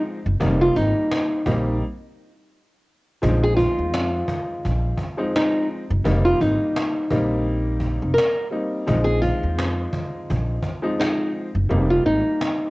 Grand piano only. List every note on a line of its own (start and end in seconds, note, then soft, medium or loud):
0.00 0.18 F3 medium
0.00 0.18 G#3 medium
0.00 0.18 C4 medium
0.00 0.19 D#4 loud
0.40 1.38 G3 medium
0.40 1.39 A#3 medium
0.40 1.39 C4 medium
0.40 1.39 D#4 loud
1.46 1.81 G3 medium
1.46 1.82 A#3 medium
1.46 1.82 C4 medium
1.46 1.82 D#4 loud
3.22 5.01 F3 loud
3.22 5.01 G#3 medium
3.22 5.02 C4 medium
3.22 5.02 D#4 loud
5.17 5.82 F3 medium
5.17 5.83 G#3 medium
5.17 5.83 C4 medium
5.17 5.83 D#4 loud
6.04 7.03 G3 loud
6.04 7.03 A#3 medium
6.04 7.04 C4 medium
6.04 7.04 D#4 loud
7.10 8.42 G3 medium
7.10 8.42 A#3 medium
7.10 8.42 C4 medium
7.10 8.43 D#4 loud
8.51 8.84 G3 medium
8.51 8.84 A#3 medium
8.51 8.85 C4 medium
8.51 8.85 D#4 medium
8.87 10.66 F3 loud
8.87 10.66 G#3 medium
8.87 10.66 C4 medium
8.87 10.67 D#4 loud
10.82 11.47 F3 medium
10.82 11.47 G#3 medium
10.82 11.48 C4 medium
10.82 11.48 D#4 loud
11.69 12.68 G3 medium
11.69 12.68 A#3 medium
11.69 12.68 C4 medium
11.69 12.69 D#4 loud